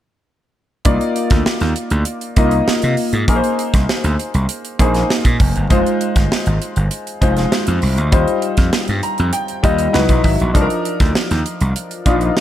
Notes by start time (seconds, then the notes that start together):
0.85 C2 A#3 D#4 F4 D5, kick, closed hi-hat
1.01 closed hi-hat
1.16 closed hi-hat
1.30 D2, kick, snare, closed hi-hat
1.46 snare
1.60 D#2, snare, closed hi-hat
1.76 closed hi-hat
1.90 D2, closed hi-hat
2.05 closed hi-hat
2.21 closed hi-hat
2.36 C2 A#3 D#4 F4 D#5, kick, closed hi-hat
2.51 closed hi-hat
2.68 muted slap bass stroke, snare
2.82 C3, closed hi-hat
2.97 open hi-hat
3.13 G#2, closed hi-hat
3.28 A#1 A#3 D#4 G#4 A#4, kick, closed hi-hat
3.36 C5
3.44 closed hi-hat
3.59 closed hi-hat
3.74 C2, kick, snare, closed hi-hat
3.89 snare
4.04 D2, closed hi-hat
4.19 closed hi-hat
4.34 C2, closed hi-hat
4.49 closed hi-hat
4.65 closed hi-hat
4.79 A#1 A#3 D#4 G#4 C5, kick, closed hi-hat
4.95 snare, closed hi-hat
5.10 snare
5.25 A#2, kick, closed hi-hat
5.40 F1, kick, open hi-hat
5.56 G1, closed hi-hat
5.70 F1 G#3 D#4 F4 C5, kick, closed hi-hat
5.86 closed hi-hat
6.01 closed hi-hat
6.16 G1, kick, snare, closed hi-hat
6.32 snare
6.46 G#1, closed hi-hat
6.62 closed hi-hat
6.76 G1, closed hi-hat
6.91 closed hi-hat
7.07 closed hi-hat
7.21 F1 G#3 D#4 F4 C5, kick, closed hi-hat
7.37 snare, closed hi-hat
7.52 snare
7.67 F2, closed hi-hat
7.82 C2, open hi-hat
7.98 D2, closed hi-hat
8.12 D#2 G3 D#4 F4 C5, kick, closed hi-hat
8.28 closed hi-hat
8.42 closed hi-hat
8.57 F2, kick, snare, closed hi-hat
8.73 snare
8.88 G2, closed hi-hat
9.03 A#5, closed hi-hat
9.18 F2, closed hi-hat
9.33 G5, closed hi-hat
9.48 closed hi-hat
9.63 D#2 G3 D#4 F4 D#5 G5, kick, closed hi-hat
9.78 closed hi-hat
9.93 C#2 F#3 D#4 E4 B4 F#5, snare
10.09 A#1, kick, closed hi-hat
10.24 G#1 E5, kick, open hi-hat
10.40 A#1, closed hi-hat
10.54 C2 F3 D4 D#4 A4, kick, closed hi-hat
10.61 A#4
10.70 closed hi-hat
10.85 closed hi-hat
11.00 D2, kick, snare, closed hi-hat
11.15 snare
11.31 D#2, snare, closed hi-hat
11.46 closed hi-hat
11.61 C2, closed hi-hat
11.76 closed hi-hat
11.91 closed hi-hat
12.05 A#1 F3 D4 D#4 F4, kick, closed hi-hat
12.21 closed hi-hat
12.37 snare